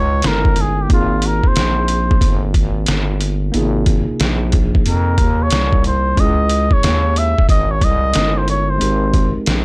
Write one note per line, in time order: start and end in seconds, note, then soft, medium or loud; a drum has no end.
0.00 0.22 C#2 loud
0.00 0.19 G#3 medium
0.00 0.20 C#4 medium
0.00 0.20 D#4 medium
0.00 0.21 E4 medium
0.00 0.22 G#4 medium
0.00 0.29 C#5 loud
0.22 0.87 G1 loud
0.22 0.90 G#3 soft
0.22 0.90 C#4 soft
0.22 0.90 D#4 soft
0.22 0.91 E4 soft
0.22 0.33 A4 soft
0.22 snare loud
0.22 closed hi-hat medium
0.27 0.63 A#4 loud
0.32 0.94 A#4 medium
0.45 kick medium
0.56 closed hi-hat medium
0.61 0.83 G#4 medium
0.82 0.92 G4 medium
0.88 1.41 G#1 loud
0.88 3.49 A#3 medium
0.88 3.50 C4 medium
0.88 3.50 D#4 medium
0.88 kick loud
0.88 closed hi-hat medium
0.92 3.51 F4 medium
0.92 1.28 F4 medium
0.92 3.52 G#4 medium
1.22 closed hi-hat medium
1.26 1.49 A#4 medium
1.44 1.49 A#1 soft
1.44 kick medium
1.48 2.45 C5 medium
1.56 2.19 A#1 loud
1.56 snare loud
1.56 closed hi-hat medium
1.88 closed hi-hat medium
2.11 kick medium
2.21 2.53 G1 loud
2.21 kick loud
2.21 closed hi-hat loud
2.54 2.86 G#1 medium
2.54 kick medium
2.54 closed hi-hat medium
2.86 3.51 G1 loud
2.86 snare loud
2.86 closed hi-hat medium
3.21 closed hi-hat medium
3.52 4.06 G#1 loud
3.52 6.13 A#3 medium
3.52 3.62 B3 medium
3.52 6.14 D#4 medium
3.52 6.14 F4 medium
3.52 closed hi-hat medium
3.57 6.16 C3 medium
3.57 6.15 G#4 medium
3.86 kick medium
3.86 closed hi-hat medium
4.09 4.13 A#1 soft
4.20 4.83 A#1 medium
4.20 snare loud
4.20 closed hi-hat medium
4.52 kick loud
4.52 closed hi-hat medium
4.75 kick medium
4.86 5.17 F2 loud
4.86 5.44 A#4 medium
4.86 closed hi-hat loud
5.18 5.50 D#2 medium
5.18 kick medium
5.18 closed hi-hat medium
5.42 5.86 C#5 loud
5.50 6.14 C2 medium
5.50 snare loud
5.50 closed hi-hat medium
5.73 kick loud
5.84 6.21 C5 medium
5.84 closed hi-hat medium
6.15 6.69 C#2 loud
6.15 8.10 G#3 medium
6.15 8.11 C#4 medium
6.15 kick loud
6.15 closed hi-hat medium
6.19 8.12 E4 medium
6.19 8.13 G#4 medium
6.19 6.75 D#5 loud
6.50 closed hi-hat medium
6.71 6.76 D#2 soft
6.71 7.19 C#5 loud
6.71 kick medium
6.83 7.35 D#2 loud
6.83 snare loud
6.83 closed hi-hat loud
7.16 7.49 E5 loud
7.16 closed hi-hat medium
7.39 7.43 G#1 medium
7.39 kick medium
7.49 7.81 G#1 medium
7.49 7.72 D#5 loud
7.49 kick loud
7.49 closed hi-hat loud
7.71 7.86 C#5 medium
7.82 8.14 C2 loud
7.82 8.39 D#5 loud
7.82 kick medium
7.82 closed hi-hat medium
8.14 8.79 G1 loud
8.14 8.77 G#3 soft
8.14 8.81 C#4 soft
8.14 8.79 D#4 soft
8.14 8.82 E4 soft
8.14 8.82 A#4 medium
8.14 snare loud
8.14 closed hi-hat loud
8.37 8.49 C5 medium
8.48 8.71 C#5 loud
8.48 closed hi-hat medium
8.70 9.36 C5 medium
8.78 9.33 G#1 loud
8.78 9.65 G#3 medium
8.78 9.65 C4 medium
8.78 9.65 D#4 medium
8.78 9.65 G4 medium
8.78 closed hi-hat medium
8.83 9.65 A#4 medium
9.14 kick medium
9.14 closed hi-hat medium
9.36 9.41 A#1 soft
9.46 9.65 A#1 loud
9.46 snare loud
9.46 closed hi-hat medium